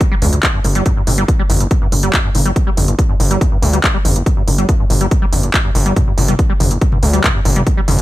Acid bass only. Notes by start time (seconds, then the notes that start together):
0.12 G3
0.22 F2
0.33 G2
0.54 G2
0.65 A#2
0.75 G3
0.86 G2
0.97 G2
1.07 A#2
1.18 G3
1.39 G3
1.50 F2
1.61 G2
1.82 G2
1.92 A#2
2.03 G3
2.13 G2
2.24 G2
2.35 A#2
2.45 G3
2.67 G3
2.77 F2
2.88 G2
3.09 G2
3.20 A#2
3.31 G3
3.41 G2
3.52 G2
3.62 A#2
3.73 G3
3.94 G3
4.05 F2
4.16 G2
4.37 G2
4.47 A#2
4.58 G3
4.69 G2
4.80 G2
4.90 A#2
5.01 G3
5.22 G3
5.32 F2
5.43 G2
5.64 G2
5.75 A#2
5.86 G3
5.96 G2
6.07 G2
6.18 A#2
6.28 G3
6.50 G3
6.60 F2
6.71 G2
6.92 G2
7.03 A#2
7.13 G3
7.24 G2
7.35 G2
7.45 A#2
7.56 G3
7.77 G3
7.88 F2
7.99 G2